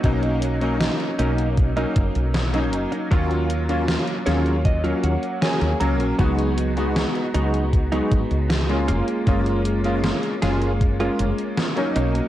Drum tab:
HH |xxxxxxxxxxxxxxxx|xxxxxxxxxxxxxxxx|xxxxxxxxxxxxxxxx|xxxxxxxxxxxxxxxx|
SD |----o-------o---|----o-o-----o---|----o-------o---|----o-o-----o---|
BD |o-------o-o-----|o-------o-------|o-------o-o-----|o-------o-------|